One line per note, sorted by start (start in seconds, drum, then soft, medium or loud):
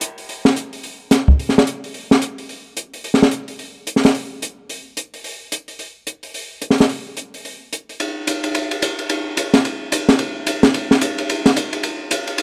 0.01 closed hi-hat soft
0.18 open hi-hat soft
0.29 open hi-hat soft
0.45 snare soft
0.56 closed hi-hat soft
0.73 open hi-hat soft
0.83 open hi-hat soft
1.11 snare soft
1.11 closed hi-hat soft
1.28 kick soft
1.40 open hi-hat soft
1.49 snare soft
1.58 snare soft
1.67 closed hi-hat soft
1.84 open hi-hat soft
1.94 open hi-hat soft
2.11 snare soft
2.22 closed hi-hat soft
2.38 open hi-hat soft
2.49 open hi-hat soft
2.77 closed hi-hat soft
2.94 open hi-hat soft
3.04 open hi-hat soft
3.14 snare soft
3.22 snare soft
3.31 closed hi-hat soft
3.48 open hi-hat soft
3.59 open hi-hat soft
3.87 closed hi-hat soft
3.96 snare soft
4.03 snare soft
4.03 open hi-hat soft
4.15 open hi-hat soft
4.42 closed hi-hat soft
4.69 open hi-hat soft
4.97 closed hi-hat soft
5.14 open hi-hat soft
5.24 open hi-hat soft
5.52 closed hi-hat soft
5.68 open hi-hat soft
5.79 open hi-hat soft
6.07 closed hi-hat soft
6.23 open hi-hat soft
6.34 open hi-hat soft
6.62 closed hi-hat soft
6.71 snare soft
6.78 snare soft
6.78 open hi-hat soft
6.89 open hi-hat soft
7.17 closed hi-hat soft
7.34 open hi-hat soft
7.45 open hi-hat soft
7.73 closed hi-hat soft
7.89 open hi-hat soft
8.00 ride medium
8.27 hi-hat pedal medium
8.27 ride medium
8.44 ride soft
8.55 ride medium
8.71 ride soft
8.82 hi-hat pedal soft
8.82 ride medium
8.99 ride soft
9.09 ride medium
9.37 hi-hat pedal soft
9.37 ride medium
9.54 snare soft
9.54 ride soft
9.65 ride medium
9.92 hi-hat pedal medium
9.92 ride medium
10.09 snare soft
10.09 ride soft
10.19 ride medium
10.46 hi-hat pedal medium
10.46 ride medium
10.63 snare medium
10.63 ride soft
10.74 ride medium
10.91 snare soft
11.01 hi-hat pedal medium
11.01 ride medium
11.18 ride soft
11.29 ride medium
11.46 snare soft
11.46 ride soft
11.56 hi-hat pedal medium
11.56 ride medium
11.73 ride soft
11.83 ride medium
12.11 hi-hat pedal medium
12.11 ride medium
12.27 ride soft
12.38 ride medium